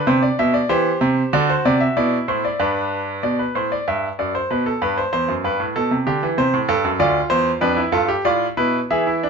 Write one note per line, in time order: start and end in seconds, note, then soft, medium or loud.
0.00 0.67 D4 medium
0.07 0.27 C3 loud
0.07 0.23 C5 medium
0.22 0.38 D5 medium
0.39 0.59 B2 medium
0.39 0.54 E5 medium
0.54 0.70 D5 medium
0.69 0.90 E3 medium
0.69 1.31 G4 medium
0.69 1.31 C5 medium
1.01 1.21 C3 medium
1.33 1.53 D3 medium
1.33 1.95 F#4 medium
1.33 1.49 D5 medium
1.49 1.65 C5 medium
1.65 1.85 C3 medium
1.65 1.81 D5 medium
1.81 1.96 E5 medium
1.97 2.16 B2 medium
1.97 2.58 E4 medium
1.97 2.16 D5 medium
2.28 2.48 A2 medium
2.28 2.44 C5 medium
2.45 2.60 D5 medium
2.60 3.21 G2 medium
2.60 3.22 D4 medium
2.60 3.21 B4 medium
3.23 3.43 B2 medium
3.23 3.39 D5 medium
3.39 3.55 B4 medium
3.55 3.75 A2 medium
3.55 3.71 C5 medium
3.72 3.87 D5 medium
3.88 4.07 G2 medium
3.88 4.07 E5 medium
4.19 4.38 F#2 medium
4.19 4.34 D5 medium
4.35 4.50 C5 medium
4.51 4.70 B2 medium
4.51 4.66 B4 medium
4.66 4.81 A4 medium
4.82 5.01 G2 medium
4.82 4.97 B4 medium
4.98 5.11 C5 medium
5.13 5.28 E2 medium
5.13 5.32 C5 medium
5.28 5.44 F#2 medium
5.44 5.60 G2 medium
5.44 5.64 B4 medium
5.60 5.75 A2 medium
5.76 5.91 B2 medium
5.76 5.95 A4 medium
5.91 6.07 C3 medium
6.07 6.22 D3 medium
6.07 6.26 G4 medium
6.23 6.38 E3 medium
6.38 6.53 C3 medium
6.38 6.58 C5 medium
6.54 6.69 A2 medium
6.69 6.84 G2 medium
6.69 6.88 A4 medium
6.84 7.00 F#2 medium
6.99 7.19 D2 medium
6.99 7.61 F4 medium
6.99 7.19 D5 medium
7.30 7.50 E2 medium
7.30 7.50 C5 medium
7.61 7.81 F2 medium
7.61 7.78 D4 medium
7.61 7.81 B4 medium
7.77 7.93 E4 medium
7.92 8.13 G2 medium
7.92 8.09 F4 medium
7.92 8.13 A4 medium
8.08 8.25 G4 medium
8.25 8.45 A2 medium
8.25 8.45 F4 medium
8.25 8.46 D5 medium
8.57 8.78 B2 medium
8.57 8.78 E4 medium
8.57 8.78 B4 medium
8.90 9.30 E3 medium
8.90 9.07 G#4 medium
8.90 9.30 E5 medium
9.07 9.23 E4 medium
9.23 9.30 D4 medium